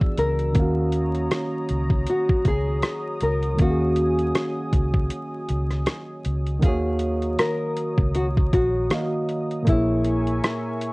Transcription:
0.00 0.51 E3 medium
0.00 0.52 B3 medium
0.00 0.53 D4 medium
0.00 0.54 F#4 medium
0.00 6.59 F#4 medium
0.00 0.53 G#4 medium
0.00 0.55 G#4 medium
0.00 0.54 D5 medium
0.00 0.54 E6 medium
0.00 kick medium
0.17 0.53 C#2 medium
0.17 2.09 A#4 loud
0.17 closed hi-hat medium
0.39 closed hi-hat soft
0.53 1.28 D#2 loud
0.53 3.53 D#3 medium
0.53 3.55 A#3 medium
0.53 6.59 C#5 medium
0.53 3.57 A#5 medium
0.53 6.59 D#6 medium
0.53 kick loud
0.53 closed hi-hat medium
0.57 3.56 C#4 medium
0.57 3.57 F5 medium
0.61 3.58 F#4 medium
0.92 closed hi-hat medium
1.15 closed hi-hat soft
1.31 cross-stick loud
1.31 closed hi-hat medium
1.69 2.05 C#2 medium
1.69 closed hi-hat medium
1.90 kick medium
2.07 2.47 F#4 medium
2.07 closed hi-hat medium
2.29 kick loud
2.45 2.80 C#2 medium
2.45 3.23 G#4 loud
2.45 kick medium
2.45 closed hi-hat medium
2.83 cross-stick loud
2.83 closed hi-hat medium
3.21 3.57 C#2 medium
3.21 3.61 A#4 medium
3.21 closed hi-hat medium
3.43 closed hi-hat soft
3.55 6.57 D#3 medium
3.55 6.58 A#3 medium
3.55 closed hi-hat medium
3.59 4.32 D#2 loud
3.59 6.59 C#4 medium
3.59 5.84 F#4 medium
3.59 6.60 F5 medium
3.59 6.61 G#5 medium
3.59 kick loud
3.64 3.69 F#4 medium
3.70 6.65 G#4 medium
3.96 closed hi-hat medium
4.19 closed hi-hat soft
4.35 cross-stick loud
4.35 closed hi-hat medium
4.73 5.08 C#2 medium
4.73 kick medium
4.73 closed hi-hat medium
4.94 kick loud
5.10 closed hi-hat medium
5.49 5.85 C#2 medium
5.49 closed hi-hat medium
5.71 cross-stick soft
5.71 closed hi-hat soft
5.86 cross-stick loud
5.86 closed hi-hat medium
6.25 6.60 C#2 medium
6.25 closed hi-hat medium
6.47 closed hi-hat soft
6.60 7.35 D#2 loud
6.60 8.85 D#3 medium
6.60 8.86 A#3 medium
6.60 9.64 C#5 medium
6.60 9.64 A#5 medium
6.60 kick loud
6.60 closed hi-hat medium
6.64 9.64 F#4 medium
6.64 8.88 F#4 medium
6.64 7.36 G#4 medium
6.64 8.87 F5 medium
6.64 9.64 D#6 medium
6.68 8.90 C#5 medium
6.99 closed hi-hat medium
7.22 closed hi-hat soft
7.39 8.15 A#4 loud
7.39 cross-stick loud
7.39 closed hi-hat medium
7.77 closed hi-hat medium
7.98 8.49 C#2 medium
7.98 kick loud
8.15 8.26 F#4 medium
8.15 closed hi-hat medium
8.37 kick medium
8.53 8.88 A#1 medium
8.53 9.25 F#4 medium
8.53 kick medium
8.53 closed hi-hat medium
8.90 9.66 D#3 medium
8.90 9.64 A#3 medium
8.90 9.68 F#4 medium
8.90 9.67 F5 medium
8.90 cross-stick loud
8.90 closed hi-hat medium
8.94 9.69 D#5 medium
9.29 closed hi-hat medium
9.51 closed hi-hat soft
9.62 10.93 A#2 medium
9.62 10.93 A#3 medium
9.67 10.39 A#1 loud
9.67 10.93 E4 medium
9.67 10.40 E4 loud
9.67 10.93 G#4 medium
9.67 10.93 A#4 medium
9.67 10.93 E5 medium
9.67 10.93 G#5 medium
9.67 10.93 C#6 medium
9.67 kick loud
9.67 closed hi-hat medium
9.72 10.93 C#5 medium
10.04 closed hi-hat medium
10.27 closed hi-hat soft
10.44 cross-stick loud
10.44 closed hi-hat medium
10.81 closed hi-hat medium

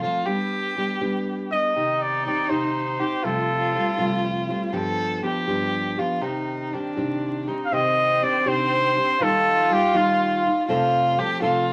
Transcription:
0.02 0.25 F3 medium
0.02 0.26 A3 soft
0.02 0.26 C4 soft
0.02 0.28 F4 medium
0.02 0.26 A4 medium
0.25 0.76 G3 medium
0.25 0.77 B3 medium
0.25 0.77 D4 medium
0.25 1.51 G4 medium
0.25 0.78 G4 medium
0.77 1.01 G3 medium
0.77 1.00 B3 medium
0.77 1.00 D4 medium
0.77 1.00 G4 medium
1.01 1.75 G3 medium
1.01 1.52 B3 medium
1.01 1.51 D4 medium
1.01 1.51 G4 medium
1.51 1.76 B3 soft
1.51 1.76 D4 soft
1.51 1.75 G4 soft
1.51 2.04 D#5 medium
1.75 2.26 C3 medium
1.75 2.25 D#3 medium
1.75 2.26 C4 medium
1.75 3.01 D#4 medium
1.75 2.26 D#4 medium
1.75 2.27 G4 medium
2.02 2.25 D5 medium
2.26 2.49 D#3 medium
2.26 2.49 C4 medium
2.26 2.48 D#4 soft
2.26 2.48 G4 medium
2.26 2.51 D5 medium
2.49 3.01 C3 medium
2.49 3.01 D#3 soft
2.49 3.00 C4 soft
2.49 2.99 D#4 medium
2.49 2.99 G4 medium
2.49 3.26 C5 medium
3.00 3.24 C4 soft
3.00 3.25 D#4 soft
3.00 3.24 G4 soft
3.00 3.25 G4 medium
3.23 3.75 F2 medium
3.23 3.75 C3 medium
3.23 3.74 G3 medium
3.23 3.74 A3 medium
3.23 3.74 C4 medium
3.23 4.74 F4 medium
3.23 3.76 F4 medium
3.23 4.25 A4 medium
3.75 3.97 G3 medium
3.75 3.97 A3 medium
3.75 3.97 C4 medium
3.75 3.97 F4 medium
3.98 4.49 F2 medium
3.98 4.49 C3 medium
3.98 4.50 G3 medium
3.98 4.48 A3 medium
3.98 4.48 C4 medium
3.98 4.47 F4 medium
4.49 4.73 G3 soft
4.49 4.73 A3 soft
4.49 4.73 C4 medium
4.49 4.73 F4 medium
4.73 5.24 G2 medium
4.73 5.48 D3 medium
4.73 5.21 F3 medium
4.73 5.21 B3 medium
4.73 5.23 D4 medium
4.73 5.24 G4 loud
4.73 5.23 A4 medium
5.22 5.47 F3 medium
5.22 5.47 B3 medium
5.22 5.46 D4 medium
5.22 5.46 G4 medium
5.22 6.00 G4 medium
5.48 5.99 G2 medium
5.48 6.21 D3 medium
5.48 5.97 F3 medium
5.48 5.97 B3 medium
5.48 5.98 D4 medium
5.48 5.97 G4 medium
5.98 6.21 F3 soft
5.98 6.22 B3 soft
5.98 6.22 D4 soft
5.98 6.23 F4 medium
5.98 6.21 G4 medium
6.21 6.72 C3 medium
6.21 6.73 D#3 medium
6.21 6.74 C4 medium
6.21 6.75 D#4 medium
6.21 6.74 G4 medium
6.73 6.96 D#3 medium
6.73 6.97 C4 medium
6.73 7.50 D4 medium
6.73 6.96 D4 medium
6.73 6.96 G4 medium
6.97 7.48 C3 medium
6.97 7.51 D#3 medium
6.97 7.48 C4 medium
6.97 7.47 D4 medium
6.97 7.47 G4 medium
7.48 7.71 C4 soft
7.48 7.72 D4 soft
7.48 7.72 D#4 medium
7.48 7.72 G4 medium
7.65 7.75 F5 medium
7.72 8.23 C3 medium
7.72 8.21 D#3 medium
7.72 8.21 C4 medium
7.72 9.18 C4 medium
7.72 8.23 G4 medium
7.72 8.25 D#5 loud
8.21 8.45 D#3 medium
8.21 8.45 C4 medium
8.21 8.45 D4 medium
8.21 8.45 G4 medium
8.21 8.49 D5 medium
8.46 8.98 C3 medium
8.46 8.97 D#3 medium
8.46 8.97 C4 medium
8.46 8.96 D4 medium
8.46 8.95 G4 medium
8.46 9.24 C5 loud
8.96 9.20 C4 soft
8.96 9.20 D4 soft
8.96 9.20 G4 soft
9.20 9.71 D#3 medium
9.20 9.68 G3 medium
9.20 9.70 A#3 medium
9.20 9.70 D#4 medium
9.20 9.71 F4 medium
9.20 10.66 F4 loud
9.20 9.74 A4 loud
9.69 9.93 G3 medium
9.69 9.93 A#3 medium
9.69 9.93 D#4 medium
9.69 9.92 F4 medium
9.69 9.98 G4 medium
9.94 10.45 D#3 medium
9.94 10.45 G3 medium
9.94 10.45 A#3 medium
9.94 10.45 D#4 medium
9.94 10.44 F4 medium
9.94 10.52 F4 medium
10.45 10.69 A#3 soft
10.45 10.69 D#4 soft
10.45 10.69 F4 medium
10.69 11.19 F2 medium
10.69 11.19 C3 medium
10.69 11.17 F3 loud
10.69 11.18 A3 medium
10.69 11.18 C4 loud
10.69 11.20 F4 loud
10.69 11.19 A4 loud
11.18 11.42 F3 medium
11.18 11.41 A3 medium
11.18 11.41 C4 medium
11.18 11.42 G4 loud
11.18 11.41 A4 medium
11.42 11.73 F2 medium
11.42 11.73 C3 medium
11.42 11.73 F3 medium
11.42 11.73 A3 medium
11.42 11.73 C4 medium
11.42 11.73 F4 loud
11.42 11.73 A4 loud

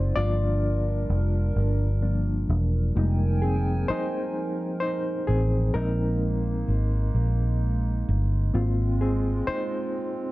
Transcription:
0.00 0.12 F#1 medium
0.00 0.11 G#3 medium
0.00 0.13 C4 medium
0.00 0.17 D#4 medium
0.00 2.90 F4 medium
0.00 0.19 C5 medium
0.00 0.16 D5 medium
0.15 1.05 G1 loud
0.15 0.77 F3 medium
0.15 2.91 G3 medium
0.15 0.78 A#3 soft
0.15 2.92 D4 medium
0.15 0.78 D4 medium
0.15 1.17 F4 medium
0.15 2.91 A#4 loud
0.15 1.16 D5 loud
1.10 1.51 F1 medium
1.56 2.44 G1 medium
2.02 2.44 F3 soft
2.02 2.44 A#3 soft
2.02 2.44 D4 soft
2.49 2.91 E1 medium
2.94 3.84 F1 loud
2.94 5.71 F3 medium
2.94 3.57 G3 medium
2.94 3.57 G#3 soft
2.94 3.57 A#3 soft
2.94 5.71 D#4 medium
2.94 3.58 D#4 medium
2.94 5.71 A#4 medium
2.94 5.71 G5 medium
2.94 5.70 G#5 medium
3.42 3.86 C4 medium
3.42 3.85 G#4 medium
3.88 4.78 D#4 medium
3.88 4.77 C5 loud
3.88 muted fingered electric bass stroke soft
4.80 5.25 D#4 medium
4.80 5.23 C5 loud
5.27 5.70 A1 medium
5.27 5.71 C4 medium
5.27 5.70 G#4 medium
5.73 6.63 A#1 loud
5.73 8.49 G#3 medium
5.73 6.36 G#3 medium
5.73 8.50 A#3 medium
5.73 6.36 C4 medium
5.73 8.50 D#4 medium
5.73 8.03 D#4 medium
5.73 8.02 A#4 medium
6.68 7.10 G#1 medium
7.15 8.03 A#1 medium
8.09 8.50 G1 medium
8.52 9.43 G#1 loud
8.52 10.32 G#3 medium
8.52 10.32 A#3 medium
8.52 10.32 C4 medium
8.52 9.01 C4 medium
8.52 10.32 F4 medium
9.01 9.22 C4 medium
9.01 9.21 G#4 medium
9.47 10.32 D#4 medium
9.47 10.32 C5 loud
9.47 muted fingered electric bass stroke soft

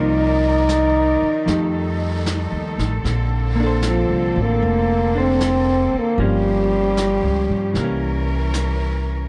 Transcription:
0.00 1.18 C2 medium
0.00 3.00 D#3 medium
0.00 1.44 F3 soft
0.00 1.48 A#3 soft
0.00 1.48 D#4 soft
0.00 2.24 D#4 medium
0.00 3.00 D#4 medium
0.00 1.46 A#4 medium
0.00 1.46 D5 medium
0.69 snare soft
0.69 hi-hat pedal medium
1.22 muted upright bass stroke soft
1.46 2.48 F2 medium
1.46 3.03 F3 soft
1.46 3.03 G3 medium
1.46 3.04 A3 soft
1.46 3.05 D#4 soft
1.46 6.14 A4 medium
1.46 brush sweep soft
1.46 snare soft
1.51 3.06 G4 soft
2.26 snare soft
2.26 hi-hat pedal soft
2.52 2.76 D#2 soft
2.78 3.02 A1 medium
2.78 snare soft
3.03 4.05 A#1 medium
3.03 6.15 D3 medium
3.03 7.71 A#3 medium
3.03 6.15 C4 medium
3.03 brush sweep soft
3.03 snare soft
3.56 6.17 A#3 soft
3.60 5.14 D4 soft
3.60 5.15 A4 soft
3.67 5.16 C5 soft
3.82 snare soft
3.82 hi-hat pedal soft
3.88 4.43 F3 medium
4.10 4.34 C2 soft
4.36 4.60 A1 medium
4.42 5.21 A#3 medium
4.62 5.90 F1 medium
4.62 brush sweep soft
5.15 6.18 D4 soft
5.15 6.19 A4 soft
5.15 6.20 C5 soft
5.20 6.00 C4 medium
5.40 snare soft
5.40 hi-hat pedal soft
5.94 muted upright bass stroke soft
5.99 6.21 A#3 medium
6.18 7.19 G1 medium
6.18 7.73 F3 soft
6.18 7.75 F3 medium
6.18 7.76 A#3 soft
6.18 7.76 C#4 soft
6.18 7.75 C#4 medium
6.18 7.75 G4 medium
6.18 brush sweep soft
6.23 8.52 G3 medium
6.97 snare soft
6.97 hi-hat pedal soft
7.23 7.47 C#2 soft
7.49 7.73 G2 medium
7.73 9.28 C2 medium
7.73 9.28 E3 soft
7.73 9.28 E3 medium
7.73 9.28 C#4 medium
7.73 brush sweep soft
7.73 snare soft
7.78 9.28 A#3 soft
7.78 9.28 A#4 medium
7.84 9.28 C#4 soft
8.54 snare soft
8.54 hi-hat pedal medium

